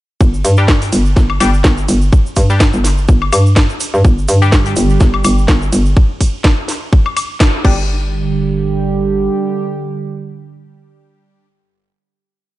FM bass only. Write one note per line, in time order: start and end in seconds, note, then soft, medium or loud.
0.21 0.43 G1 loud
0.45 0.91 G2 medium
0.93 1.15 G1 medium
1.17 1.39 G1 loud
1.41 1.63 G1 medium
1.65 1.87 G1 medium
1.89 2.11 G1 loud
2.37 2.72 G2 loud
2.74 3.07 G1 medium
3.09 3.31 G1 loud
3.33 3.68 G2 loud
3.94 4.03 G2 loud
4.05 4.27 G1 loud
4.29 4.75 G2 loud
4.77 4.99 G1 loud
5.01 5.23 G1 loud
5.25 5.47 G1 medium
5.49 5.71 G1 loud
5.73 5.95 G1 loud
7.65 9.29 G1 loud